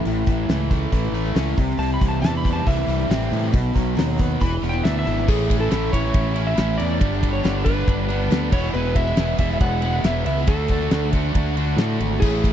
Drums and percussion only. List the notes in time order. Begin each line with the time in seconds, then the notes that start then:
0.05 open hi-hat
0.27 kick, open hi-hat
0.49 snare, open hi-hat
0.71 kick, open hi-hat
0.92 kick, open hi-hat
1.14 open hi-hat
1.36 snare, open hi-hat
1.58 kick, open hi-hat
1.70 snare
1.80 open hi-hat
2.01 kick, open hi-hat
2.24 snare, open hi-hat
2.45 kick, open hi-hat
2.67 kick, open hi-hat
2.89 open hi-hat
3.11 snare, open hi-hat
3.33 open hi-hat
3.54 kick, open hi-hat
3.76 kick, open hi-hat
3.98 snare, open hi-hat
4.19 kick, open hi-hat
4.41 kick, open hi-hat
4.64 open hi-hat
4.85 snare, open hi-hat
5.07 open hi-hat
5.18 snare
5.28 kick, crash
5.50 kick, ride
5.62 snare
5.71 snare, ride
5.93 kick, ride
6.05 snare
6.14 kick, ride
6.36 ride
6.58 snare, ride
6.80 ride
7.01 kick, ride
7.23 kick, ride
7.45 snare, ride
7.66 kick, ride
7.79 snare
7.88 kick, ride
8.10 ride
8.32 snare, ride
8.52 kick, crash
8.96 kick, ride
9.07 snare
9.17 snare, ride
9.38 kick, ride
9.50 snare
9.60 kick, ride
9.82 ride
10.04 snare, ride
10.26 ride
10.47 kick, ride
10.68 kick, ride
10.81 snare
10.91 snare, ride
11.13 kick, ride
11.35 kick, ride
11.57 ride
11.78 snare, ride
12.00 ride
12.22 kick, crash
12.44 kick, ride